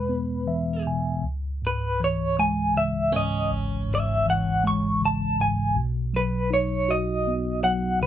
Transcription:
0, 0, Header, 1, 4, 480
1, 0, Start_track
1, 0, Key_signature, 4, "minor"
1, 0, Tempo, 753769
1, 786, Time_signature, 6, 3, 24, 8
1, 5136, End_track
2, 0, Start_track
2, 0, Title_t, "Clean electric guitar"
2, 0, Program_c, 0, 27
2, 0, Note_on_c, 0, 71, 88
2, 531, Note_off_c, 0, 71, 0
2, 1061, Note_on_c, 0, 71, 65
2, 1292, Note_off_c, 0, 71, 0
2, 1300, Note_on_c, 0, 73, 83
2, 1523, Note_off_c, 0, 73, 0
2, 1525, Note_on_c, 0, 80, 98
2, 1764, Note_off_c, 0, 80, 0
2, 1766, Note_on_c, 0, 76, 83
2, 1983, Note_off_c, 0, 76, 0
2, 2014, Note_on_c, 0, 75, 72
2, 2227, Note_off_c, 0, 75, 0
2, 2514, Note_on_c, 0, 76, 76
2, 2735, Note_off_c, 0, 76, 0
2, 2737, Note_on_c, 0, 78, 90
2, 2948, Note_off_c, 0, 78, 0
2, 2976, Note_on_c, 0, 85, 104
2, 3186, Note_off_c, 0, 85, 0
2, 3219, Note_on_c, 0, 81, 81
2, 3444, Note_off_c, 0, 81, 0
2, 3447, Note_on_c, 0, 80, 71
2, 3661, Note_off_c, 0, 80, 0
2, 3925, Note_on_c, 0, 71, 76
2, 4159, Note_off_c, 0, 71, 0
2, 4162, Note_on_c, 0, 73, 88
2, 4397, Note_on_c, 0, 75, 87
2, 4400, Note_off_c, 0, 73, 0
2, 4862, Note_off_c, 0, 75, 0
2, 4864, Note_on_c, 0, 78, 94
2, 5086, Note_off_c, 0, 78, 0
2, 5111, Note_on_c, 0, 73, 80
2, 5136, Note_off_c, 0, 73, 0
2, 5136, End_track
3, 0, Start_track
3, 0, Title_t, "Steel-string acoustic guitar"
3, 0, Program_c, 1, 25
3, 1988, Note_on_c, 1, 61, 68
3, 3098, Note_off_c, 1, 61, 0
3, 5136, End_track
4, 0, Start_track
4, 0, Title_t, "Tine electric piano"
4, 0, Program_c, 2, 4
4, 0, Control_c, 2, 64, 127
4, 0, Note_on_c, 2, 40, 67
4, 0, Note_on_c, 2, 47, 55
4, 0, Note_on_c, 2, 56, 49
4, 58, Note_on_c, 2, 59, 54
4, 298, Note_on_c, 2, 52, 50
4, 303, Note_on_c, 2, 76, 62
4, 522, Note_off_c, 2, 47, 0
4, 528, Note_off_c, 2, 76, 0
4, 553, Note_on_c, 2, 47, 50
4, 555, Note_on_c, 2, 80, 61
4, 762, Note_off_c, 2, 59, 0
4, 765, Note_off_c, 2, 56, 0
4, 769, Note_off_c, 2, 40, 0
4, 769, Note_off_c, 2, 52, 0
4, 774, Note_off_c, 2, 80, 0
4, 780, Note_on_c, 2, 37, 61
4, 783, Note_off_c, 2, 47, 0
4, 793, Control_c, 2, 64, 0
4, 888, Control_c, 2, 64, 127
4, 1033, Note_on_c, 2, 44, 50
4, 1273, Note_on_c, 2, 52, 48
4, 1521, Note_on_c, 2, 56, 58
4, 1748, Note_on_c, 2, 49, 50
4, 1969, Note_off_c, 2, 44, 0
4, 1999, Note_on_c, 2, 44, 49
4, 2203, Note_off_c, 2, 37, 0
4, 2209, Note_off_c, 2, 52, 0
4, 2236, Note_on_c, 2, 32, 65
4, 2453, Note_off_c, 2, 56, 0
4, 2468, Note_off_c, 2, 44, 0
4, 2475, Note_on_c, 2, 44, 56
4, 2685, Note_off_c, 2, 49, 0
4, 2714, Note_on_c, 2, 52, 53
4, 2954, Note_on_c, 2, 56, 58
4, 3194, Note_on_c, 2, 49, 54
4, 3405, Note_off_c, 2, 44, 0
4, 3435, Note_on_c, 2, 44, 54
4, 3643, Note_off_c, 2, 52, 0
4, 3644, Note_off_c, 2, 32, 0
4, 3648, Note_off_c, 2, 56, 0
4, 3655, Note_off_c, 2, 49, 0
4, 3664, Note_off_c, 2, 44, 0
4, 3664, Note_on_c, 2, 47, 71
4, 3667, Note_on_c, 2, 35, 67
4, 3676, Control_c, 2, 64, 0
4, 3796, Control_c, 2, 64, 127
4, 3906, Note_on_c, 2, 54, 52
4, 4142, Note_on_c, 2, 63, 55
4, 4385, Note_on_c, 2, 66, 58
4, 4632, Note_on_c, 2, 59, 52
4, 4837, Note_off_c, 2, 54, 0
4, 4862, Note_on_c, 2, 54, 52
4, 5075, Note_off_c, 2, 47, 0
4, 5075, Note_off_c, 2, 63, 0
4, 5077, Note_off_c, 2, 35, 0
4, 5081, Note_off_c, 2, 66, 0
4, 5092, Note_off_c, 2, 59, 0
4, 5095, Note_off_c, 2, 54, 0
4, 5106, Note_on_c, 2, 37, 62
4, 5107, Note_on_c, 2, 49, 66
4, 5110, Control_c, 2, 64, 0
4, 5136, Note_off_c, 2, 37, 0
4, 5136, Note_off_c, 2, 49, 0
4, 5136, End_track
0, 0, End_of_file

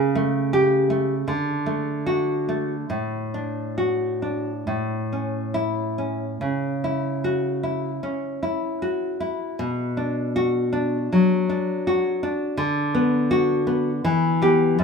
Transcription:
0, 0, Header, 1, 2, 480
1, 0, Start_track
1, 0, Key_signature, 2, "major"
1, 0, Tempo, 758534
1, 1307, Tempo, 828729
1, 1787, Time_signature, 4, 2, 24, 8
1, 1787, Tempo, 886263
1, 3227, Tempo, 847458
1, 3718, Key_signature, 2, "minor"
1, 4187, Tempo, 790514
1, 5147, Tempo, 765306
1, 6587, Tempo, 734394
1, 9014, End_track
2, 0, Start_track
2, 0, Title_t, "Nylon-string guitar"
2, 0, Program_c, 0, 24
2, 0, Note_on_c, 0, 49, 68
2, 98, Note_on_c, 0, 57, 52
2, 337, Note_on_c, 0, 67, 68
2, 562, Note_off_c, 0, 57, 0
2, 570, Note_on_c, 0, 57, 49
2, 718, Note_off_c, 0, 67, 0
2, 783, Note_off_c, 0, 49, 0
2, 807, Note_on_c, 0, 50, 57
2, 812, Note_off_c, 0, 57, 0
2, 1052, Note_on_c, 0, 57, 44
2, 1306, Note_on_c, 0, 66, 57
2, 1544, Note_off_c, 0, 57, 0
2, 1551, Note_on_c, 0, 57, 42
2, 1688, Note_off_c, 0, 66, 0
2, 1760, Note_off_c, 0, 50, 0
2, 1788, Note_on_c, 0, 45, 49
2, 1791, Note_off_c, 0, 57, 0
2, 2029, Note_on_c, 0, 62, 38
2, 2265, Note_on_c, 0, 66, 52
2, 2500, Note_off_c, 0, 62, 0
2, 2506, Note_on_c, 0, 62, 37
2, 2656, Note_off_c, 0, 66, 0
2, 2733, Note_off_c, 0, 45, 0
2, 2748, Note_on_c, 0, 45, 48
2, 2753, Note_off_c, 0, 62, 0
2, 2995, Note_on_c, 0, 61, 33
2, 3221, Note_on_c, 0, 64, 54
2, 3463, Note_off_c, 0, 61, 0
2, 3470, Note_on_c, 0, 61, 39
2, 3617, Note_off_c, 0, 64, 0
2, 3692, Note_off_c, 0, 45, 0
2, 3712, Note_on_c, 0, 49, 55
2, 3717, Note_off_c, 0, 61, 0
2, 3956, Note_on_c, 0, 64, 43
2, 4184, Note_on_c, 0, 66, 57
2, 4414, Note_off_c, 0, 64, 0
2, 4421, Note_on_c, 0, 64, 43
2, 4569, Note_off_c, 0, 66, 0
2, 4639, Note_off_c, 0, 49, 0
2, 4662, Note_on_c, 0, 61, 43
2, 4895, Note_off_c, 0, 64, 0
2, 4902, Note_on_c, 0, 64, 42
2, 5142, Note_on_c, 0, 66, 46
2, 5375, Note_off_c, 0, 64, 0
2, 5382, Note_on_c, 0, 64, 48
2, 5387, Note_off_c, 0, 61, 0
2, 5625, Note_on_c, 0, 47, 58
2, 5626, Note_off_c, 0, 64, 0
2, 5627, Note_off_c, 0, 66, 0
2, 5864, Note_on_c, 0, 62, 45
2, 6106, Note_on_c, 0, 66, 61
2, 6329, Note_off_c, 0, 62, 0
2, 6337, Note_on_c, 0, 62, 46
2, 6491, Note_off_c, 0, 66, 0
2, 6559, Note_off_c, 0, 47, 0
2, 6587, Note_on_c, 0, 54, 51
2, 6820, Note_off_c, 0, 62, 0
2, 6828, Note_on_c, 0, 62, 46
2, 7075, Note_on_c, 0, 66, 50
2, 7301, Note_off_c, 0, 62, 0
2, 7306, Note_off_c, 0, 54, 0
2, 7309, Note_on_c, 0, 62, 55
2, 7534, Note_on_c, 0, 50, 67
2, 7543, Note_off_c, 0, 62, 0
2, 7543, Note_off_c, 0, 66, 0
2, 7777, Note_on_c, 0, 59, 54
2, 8014, Note_on_c, 0, 66, 70
2, 8242, Note_off_c, 0, 59, 0
2, 8250, Note_on_c, 0, 59, 57
2, 8396, Note_off_c, 0, 66, 0
2, 8465, Note_off_c, 0, 50, 0
2, 8491, Note_off_c, 0, 59, 0
2, 8496, Note_on_c, 0, 52, 72
2, 8739, Note_on_c, 0, 59, 46
2, 8743, Note_on_c, 0, 67, 64
2, 8963, Note_off_c, 0, 59, 0
2, 8964, Note_off_c, 0, 67, 0
2, 8972, Note_off_c, 0, 52, 0
2, 8980, Note_on_c, 0, 42, 59
2, 9014, Note_off_c, 0, 42, 0
2, 9014, End_track
0, 0, End_of_file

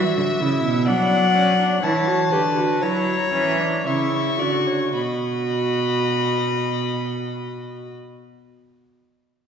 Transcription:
0, 0, Header, 1, 5, 480
1, 0, Start_track
1, 0, Key_signature, 2, "minor"
1, 0, Tempo, 943396
1, 443, Time_signature, 4, 2, 24, 8
1, 930, Tempo, 1015228
1, 1890, Tempo, 1092896
1, 2370, Tempo, 1123596
1, 4300, End_track
2, 0, Start_track
2, 0, Title_t, "Violin"
2, 0, Program_c, 0, 40
2, 0, Note_on_c, 0, 76, 93
2, 425, Note_off_c, 0, 76, 0
2, 443, Note_on_c, 0, 78, 101
2, 931, Note_on_c, 0, 81, 94
2, 938, Note_off_c, 0, 78, 0
2, 1401, Note_on_c, 0, 82, 98
2, 1408, Note_off_c, 0, 81, 0
2, 1891, Note_off_c, 0, 82, 0
2, 1894, Note_on_c, 0, 85, 96
2, 2362, Note_off_c, 0, 85, 0
2, 2372, Note_on_c, 0, 83, 82
2, 3637, Note_off_c, 0, 83, 0
2, 4300, End_track
3, 0, Start_track
3, 0, Title_t, "Violin"
3, 0, Program_c, 1, 40
3, 0, Note_on_c, 1, 76, 91
3, 442, Note_on_c, 1, 74, 97
3, 450, Note_off_c, 1, 76, 0
3, 926, Note_off_c, 1, 74, 0
3, 929, Note_on_c, 1, 73, 88
3, 1162, Note_on_c, 1, 71, 88
3, 1169, Note_off_c, 1, 73, 0
3, 1399, Note_on_c, 1, 73, 95
3, 1406, Note_off_c, 1, 71, 0
3, 1892, Note_on_c, 1, 76, 88
3, 1898, Note_off_c, 1, 73, 0
3, 2126, Note_on_c, 1, 74, 80
3, 2133, Note_off_c, 1, 76, 0
3, 2248, Note_on_c, 1, 73, 71
3, 2254, Note_off_c, 1, 74, 0
3, 2367, Note_off_c, 1, 73, 0
3, 2369, Note_on_c, 1, 75, 85
3, 3634, Note_off_c, 1, 75, 0
3, 4300, End_track
4, 0, Start_track
4, 0, Title_t, "Viola"
4, 0, Program_c, 2, 41
4, 0, Note_on_c, 2, 66, 90
4, 206, Note_on_c, 2, 64, 89
4, 214, Note_off_c, 2, 66, 0
4, 444, Note_on_c, 2, 62, 90
4, 452, Note_off_c, 2, 64, 0
4, 686, Note_on_c, 2, 61, 90
4, 693, Note_off_c, 2, 62, 0
4, 805, Note_off_c, 2, 61, 0
4, 808, Note_on_c, 2, 62, 87
4, 927, Note_off_c, 2, 62, 0
4, 930, Note_on_c, 2, 64, 81
4, 1046, Note_on_c, 2, 66, 78
4, 1053, Note_off_c, 2, 64, 0
4, 1159, Note_off_c, 2, 66, 0
4, 1162, Note_on_c, 2, 67, 95
4, 1200, Note_off_c, 2, 67, 0
4, 1280, Note_on_c, 2, 66, 78
4, 1400, Note_on_c, 2, 64, 90
4, 1407, Note_off_c, 2, 66, 0
4, 1638, Note_off_c, 2, 64, 0
4, 1641, Note_on_c, 2, 61, 83
4, 1766, Note_on_c, 2, 62, 86
4, 1773, Note_off_c, 2, 61, 0
4, 1887, Note_off_c, 2, 62, 0
4, 1890, Note_on_c, 2, 64, 83
4, 2122, Note_off_c, 2, 64, 0
4, 2126, Note_on_c, 2, 66, 83
4, 2364, Note_off_c, 2, 66, 0
4, 2367, Note_on_c, 2, 66, 73
4, 3632, Note_off_c, 2, 66, 0
4, 4300, End_track
5, 0, Start_track
5, 0, Title_t, "Cello"
5, 0, Program_c, 3, 42
5, 85, Note_on_c, 3, 50, 86
5, 126, Note_off_c, 3, 50, 0
5, 202, Note_on_c, 3, 49, 87
5, 320, Note_off_c, 3, 49, 0
5, 323, Note_on_c, 3, 47, 103
5, 443, Note_on_c, 3, 54, 104
5, 451, Note_off_c, 3, 47, 0
5, 928, Note_off_c, 3, 54, 0
5, 931, Note_on_c, 3, 52, 83
5, 1158, Note_off_c, 3, 52, 0
5, 1164, Note_on_c, 3, 50, 83
5, 1395, Note_off_c, 3, 50, 0
5, 1401, Note_on_c, 3, 54, 90
5, 1638, Note_off_c, 3, 54, 0
5, 1643, Note_on_c, 3, 52, 88
5, 1886, Note_off_c, 3, 52, 0
5, 1891, Note_on_c, 3, 49, 83
5, 2130, Note_on_c, 3, 50, 75
5, 2136, Note_off_c, 3, 49, 0
5, 2369, Note_off_c, 3, 50, 0
5, 2372, Note_on_c, 3, 47, 81
5, 3637, Note_off_c, 3, 47, 0
5, 4300, End_track
0, 0, End_of_file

